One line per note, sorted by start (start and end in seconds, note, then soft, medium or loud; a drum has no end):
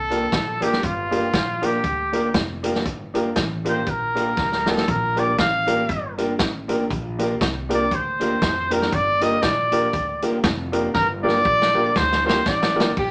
0.00 0.25 C2 medium
0.00 0.65 A4 loud
0.10 0.25 A#3 medium
0.10 0.24 D4 medium
0.10 0.25 D4 loud
0.10 0.24 F4 medium
0.10 0.24 G4 medium
0.10 0.26 G4 medium
0.10 0.25 A#4 medium
0.10 closed hi-hat medium
0.32 0.58 A#1 loud
0.32 kick loud
0.32 snare loud
0.32 closed hi-hat medium
0.60 0.80 G1 medium
0.60 0.76 A#3 medium
0.60 0.74 D4 medium
0.60 0.76 D4 loud
0.60 0.75 F4 medium
0.60 0.75 G4 medium
0.60 0.86 G4 loud
0.60 0.76 G4 medium
0.60 0.75 A#4 loud
0.60 closed hi-hat loud
0.73 snare medium
0.83 1.27 G1 loud
0.83 1.67 F4 loud
0.83 kick loud
0.83 closed hi-hat medium
1.11 1.25 A#3 medium
1.11 1.25 D4 medium
1.11 1.25 F4 medium
1.11 1.26 F4 medium
1.11 1.25 G4 medium
1.11 1.26 G4 medium
1.11 1.26 A#4 loud
1.11 closed hi-hat medium
1.33 1.77 A#1 medium
1.33 kick loud
1.33 snare loud
1.33 closed hi-hat medium
1.62 1.76 A#3 medium
1.62 1.76 D4 loud
1.62 1.76 F4 medium
1.62 1.77 F4 medium
1.62 1.76 G4 medium
1.62 1.77 G4 loud
1.62 2.36 G4 loud
1.62 1.76 A#4 loud
1.62 closed hi-hat loud
1.84 2.36 D2 medium
1.84 kick loud
1.84 closed hi-hat medium
2.12 2.27 A#3 loud
2.12 2.26 D4 medium
2.12 2.27 F4 medium
2.12 2.28 F4 medium
2.12 2.27 G4 medium
2.12 2.28 G4 loud
2.12 2.27 A#4 loud
2.12 closed hi-hat medium
2.34 2.86 F1 medium
2.34 kick loud
2.34 snare loud
2.34 closed hi-hat medium
2.63 2.77 A#3 medium
2.63 2.77 D4 medium
2.63 2.77 F4 medium
2.63 2.78 F4 medium
2.63 2.77 G4 medium
2.63 2.79 G4 medium
2.63 2.78 A#4 loud
2.63 closed hi-hat loud
2.75 snare medium
2.86 3.29 G1 loud
2.86 kick loud
2.86 closed hi-hat medium
3.14 3.28 A#3 medium
3.14 3.28 D4 medium
3.14 3.28 F4 medium
3.14 3.29 F4 medium
3.14 3.28 G4 medium
3.14 3.29 G4 medium
3.14 3.28 A#4 loud
3.14 closed hi-hat medium
3.36 3.80 A1 medium
3.36 3.42 G4 soft
3.36 3.42 A#4 soft
3.36 kick loud
3.36 snare loud
3.36 closed hi-hat medium
3.64 3.79 A#3 medium
3.64 3.78 D4 medium
3.64 3.78 F4 medium
3.64 3.80 F4 medium
3.64 3.79 G4 medium
3.64 3.80 G4 loud
3.64 3.79 A#4 loud
3.64 3.91 C5 medium
3.64 closed hi-hat loud
3.87 4.30 A#1 medium
3.87 4.70 A#4 medium
3.87 kick loud
3.87 closed hi-hat medium
4.15 4.30 A#3 medium
4.15 4.29 D4 medium
4.15 4.29 F4 medium
4.15 4.30 F4 medium
4.15 4.29 G4 medium
4.15 4.31 G4 medium
4.15 4.29 A#4 loud
4.15 closed hi-hat medium
4.37 4.81 D2 medium
4.37 kick loud
4.37 snare medium
4.52 snare medium
4.66 4.81 A#3 medium
4.66 4.79 D4 medium
4.66 4.80 F4 medium
4.66 4.81 F4 loud
4.66 4.80 G4 medium
4.66 4.82 G4 loud
4.66 4.91 A4 medium
4.66 4.80 A#4 loud
4.66 snare loud
4.77 snare medium
4.88 5.31 A#1 loud
4.88 5.21 A#4 loud
4.88 kick loud
4.88 closed hi-hat medium
5.16 5.30 A#3 medium
5.16 5.30 D4 loud
5.16 5.31 D4 medium
5.16 5.30 F4 medium
5.16 5.30 G4 medium
5.16 5.32 G4 loud
5.16 5.31 A#4 loud
5.16 5.39 D5 loud
5.16 closed hi-hat medium
5.38 5.82 A1 medium
5.38 6.15 F5 loud
5.38 kick loud
5.38 snare loud
5.38 closed hi-hat medium
5.67 5.81 A#3 medium
5.67 5.80 D4 loud
5.67 5.82 D4 medium
5.67 5.81 F4 medium
5.67 5.81 G4 medium
5.67 5.82 G4 medium
5.67 5.81 A#4 loud
5.67 closed hi-hat loud
5.89 6.40 G1 loud
5.89 kick loud
5.89 closed hi-hat medium
6.18 6.32 A#3 medium
6.18 6.31 D4 medium
6.18 6.32 D4 medium
6.18 6.31 F4 medium
6.18 6.32 G4 medium
6.18 6.33 G4 loud
6.18 6.32 A#4 medium
6.18 closed hi-hat medium
6.39 6.83 A1 loud
6.39 kick loud
6.39 snare loud
6.39 closed hi-hat medium
6.68 6.83 A#3 medium
6.68 6.82 D4 medium
6.68 6.83 D4 medium
6.68 6.82 F4 medium
6.68 6.82 G4 medium
6.68 6.84 G4 loud
6.68 6.82 A#4 loud
6.68 closed hi-hat loud
6.90 7.34 A#1 loud
6.90 kick loud
6.90 closed hi-hat medium
7.18 7.33 A#3 medium
7.18 7.32 D4 loud
7.18 7.34 D4 medium
7.18 7.33 F4 medium
7.18 7.33 G4 medium
7.18 7.34 G4 medium
7.18 7.33 A#4 loud
7.18 closed hi-hat medium
7.40 7.84 C2 medium
7.40 7.46 G4 soft
7.40 7.46 A#4 soft
7.40 kick loud
7.40 snare loud
7.40 closed hi-hat medium
7.69 7.83 A#3 medium
7.69 7.83 D4 loud
7.69 7.84 D4 medium
7.69 7.83 F4 medium
7.69 7.83 G4 medium
7.69 7.85 G4 medium
7.69 7.83 A#4 loud
7.69 closed hi-hat loud
7.74 7.96 D5 medium
7.91 8.35 D2 loud
7.91 8.74 C5 medium
7.91 kick loud
7.91 closed hi-hat medium
8.20 8.34 A#3 loud
8.20 8.33 D4 medium
8.20 8.34 D4 medium
8.20 8.34 F4 medium
8.20 8.34 G4 medium
8.20 8.35 G4 medium
8.20 8.34 A#4 medium
8.20 closed hi-hat medium
8.42 8.85 F2 loud
8.42 kick loud
8.42 snare loud
8.42 closed hi-hat medium
8.70 8.85 A#3 medium
8.70 8.84 D4 loud
8.70 8.85 D4 medium
8.70 8.84 F4 medium
8.70 8.84 G4 medium
8.70 8.85 G4 loud
8.70 8.85 A#4 loud
8.70 8.95 A#4 medium
8.70 closed hi-hat loud
8.82 snare medium
8.92 9.36 G1 loud
8.92 9.24 D5 loud
8.92 kick loud
8.92 closed hi-hat medium
9.21 9.35 A#3 medium
9.21 9.34 D4 medium
9.21 9.35 F4 medium
9.21 9.36 F4 medium
9.21 9.35 G4 medium
9.21 9.36 G4 medium
9.21 9.35 A#4 loud
9.21 9.44 D#5 loud
9.21 closed hi-hat medium
9.42 9.86 A#1 medium
9.42 10.22 D5 loud
9.42 kick loud
9.42 snare loud
9.42 closed hi-hat medium
9.72 9.86 A#3 medium
9.72 9.85 D4 loud
9.72 9.85 F4 medium
9.72 9.86 F4 loud
9.72 9.86 G4 medium
9.72 9.87 G4 medium
9.72 9.86 A#4 loud
9.72 closed hi-hat loud
9.93 10.46 D2 medium
9.93 kick loud
9.93 closed hi-hat medium
10.22 10.37 A#3 medium
10.22 10.36 D4 medium
10.22 10.36 F4 medium
10.22 10.37 F4 medium
10.22 10.36 G4 medium
10.22 10.38 G4 loud
10.22 10.36 A#4 medium
10.22 closed hi-hat medium
10.44 10.87 F1 loud
10.44 kick loud
10.44 snare loud
10.44 closed hi-hat medium
10.72 10.87 A#3 medium
10.72 10.86 D4 loud
10.72 10.86 F4 medium
10.72 10.87 F4 medium
10.72 10.86 G4 medium
10.72 10.88 G4 loud
10.72 10.87 A#4 loud
10.72 closed hi-hat loud
10.94 11.38 G1 loud
10.94 11.07 A#4 loud
10.94 kick loud
10.94 snare medium
11.23 11.37 A#3 medium
11.23 11.37 D4 loud
11.23 11.37 F4 medium
11.23 11.38 F4 medium
11.23 11.37 G4 medium
11.23 11.38 G4 medium
11.23 11.38 A#4 loud
11.23 11.98 D5 loud
11.28 snare medium
11.45 11.88 A#1 medium
11.45 11.51 G4 soft
11.45 11.51 A#4 soft
11.45 kick loud
11.62 snare medium
11.74 11.88 A#3 medium
11.74 11.87 D4 loud
11.74 11.88 F4 medium
11.74 11.89 F4 medium
11.74 11.88 G4 medium
11.74 11.89 G4 loud
11.74 11.88 A#4 loud
11.96 12.39 D2 loud
11.96 12.26 C5 loud
11.96 kick loud
11.96 snare medium
12.12 snare medium
12.24 12.39 A#3 loud
12.24 12.38 D4 medium
12.24 12.38 F4 medium
12.24 12.39 F4 loud
12.24 12.39 G4 medium
12.24 12.40 G4 loud
12.24 12.39 A#4 loud
12.24 12.50 C5 loud
12.29 snare loud
12.46 12.89 A1 medium
12.46 12.98 D5 medium
12.46 kick loud
12.46 snare medium
12.62 snare medium
12.75 12.89 A#3 loud
12.75 12.89 D4 loud
12.75 12.89 F4 medium
12.75 12.90 F4 loud
12.75 12.89 G4 medium
12.75 12.90 G4 loud
12.75 12.89 A#4 loud
12.80 snare loud
12.97 13.11 A#1 loud
12.97 13.11 G4 loud
12.97 kick loud
12.97 ride medium